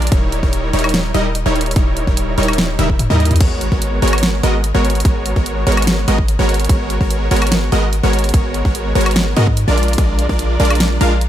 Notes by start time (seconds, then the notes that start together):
0.02 closed hi-hat
0.07 closed hi-hat
0.12 D#1 G3 D#4 E4 A#4 C#5, kick, closed hi-hat
0.32 closed hi-hat
0.43 D#1 G3 D#4 E4 A#4 C#5, kick
0.53 closed hi-hat
0.73 D#1 G3 D#4 E4 A#4 C#5, closed hi-hat
0.79 closed hi-hat
0.84 closed hi-hat, high woodblock
0.89 closed hi-hat
0.94 snare, closed hi-hat
1.14 D#1 G3 D#4 E4 A#4 D#5, closed hi-hat
1.35 closed hi-hat
1.46 D#1 G3 D#4 E4 A#4 C#5
1.56 closed hi-hat
1.61 closed hi-hat
1.66 closed hi-hat
1.71 closed hi-hat
1.76 D#1 G3 D#4 E4 A#4 C#5, kick, closed hi-hat
1.97 closed hi-hat
2.07 D#1 G3 D#4 E4 A#4 C#5, kick
2.17 closed hi-hat
2.38 D#1 G3 D#4 E4 A#4 C#5, closed hi-hat
2.43 closed hi-hat
2.48 closed hi-hat, high woodblock
2.53 closed hi-hat
2.58 snare, closed hi-hat
2.79 D#1 G3 D#4 E4 A#4 E5, closed hi-hat, high tom
2.90 kick
2.99 closed hi-hat, mid tom
3.10 D#2 G3 D#4 E4 A#4 D#5, snare, mid tom
3.20 closed hi-hat
3.25 closed hi-hat
3.31 closed hi-hat, mid tom
3.36 closed hi-hat
3.40 G#1 G#3 B3 F#4 A#4 C#5, kick, closed hi-hat, crash
3.61 closed hi-hat
3.72 G#1 G#3 B3 F#4 A#4 C#5, kick
3.82 closed hi-hat
4.02 G#1 G#3 B3 F#4 A#4 C#5, closed hi-hat
4.08 closed hi-hat
4.13 closed hi-hat, high woodblock
4.18 closed hi-hat
4.23 snare, closed hi-hat
4.43 G#1 G#3 B3 F#4 A#4 D#5, closed hi-hat
4.64 closed hi-hat
4.75 G#1 G#3 B3 F#4 A#4 C#5
4.85 closed hi-hat
4.90 closed hi-hat
4.95 closed hi-hat
5.00 closed hi-hat
5.05 G#1 G#3 B3 F#4 A#4 C#5, kick, closed hi-hat
5.26 closed hi-hat
5.36 G#1 G#3 B3 F#4 A#4 C#5, kick
5.46 closed hi-hat
5.67 G#1 G#3 B3 F#4 A#4 C#5, closed hi-hat
5.72 closed hi-hat
5.77 closed hi-hat, high woodblock
5.82 closed hi-hat
5.87 snare, closed hi-hat
6.08 G#1 G#3 B3 F#4 A#4 D#5, closed hi-hat
6.18 kick
6.28 closed hi-hat
6.39 G#1 G#3 B3 F#4 A#4 C#5, snare
6.49 closed hi-hat
6.54 closed hi-hat
6.60 closed hi-hat
6.65 closed hi-hat
6.69 G#1 G#3 B3 F#4 A#4 C#5, kick, closed hi-hat
6.90 closed hi-hat
7.01 G#1 G#3 B3 F#4 A#4 C#5, kick
7.11 closed hi-hat
7.31 G#1 G#3 B3 F#4 A#4 C#5, closed hi-hat
7.36 closed hi-hat
7.42 closed hi-hat, high woodblock
7.47 closed hi-hat
7.52 snare, closed hi-hat
7.72 G#1 G#3 B3 F#4 A#4 D#5, closed hi-hat
7.93 closed hi-hat
8.03 G#1 G#3 B3 F#4 A#4 C#5
8.13 closed hi-hat
8.19 closed hi-hat
8.24 closed hi-hat
8.29 closed hi-hat
8.34 G#1 G#3 B3 F#4 A#4 C#5, kick, closed hi-hat
8.54 closed hi-hat
8.65 G#1 G#3 B3 F#4 A#4 C#5, kick
8.75 closed hi-hat
8.95 G#1 G#3 B3 F#4 A#4 C#5, closed hi-hat
9.01 closed hi-hat
9.06 closed hi-hat, high woodblock
9.11 closed hi-hat
9.16 snare, closed hi-hat
9.37 G#2 G#3 B3 F#4 A#4 D#5, closed hi-hat
9.47 kick
9.57 closed hi-hat
9.68 A#1 G#3 D4 F4 A#4 D5, snare
9.78 closed hi-hat
9.83 closed hi-hat
9.88 closed hi-hat
9.93 closed hi-hat
9.98 A#1 G#3 D4 F4 A#4 D5, kick, closed hi-hat
10.19 closed hi-hat
10.29 A#1 G#3 D4 F4 A#4 D5, kick
10.39 closed hi-hat
10.60 A#1 G#3 D4 F4 A#4 D5, closed hi-hat
10.65 closed hi-hat
10.70 closed hi-hat, high woodblock
10.75 closed hi-hat
10.80 snare, closed hi-hat
11.01 A#1 G#3 D4 F4 A#4 F5, closed hi-hat
11.21 closed hi-hat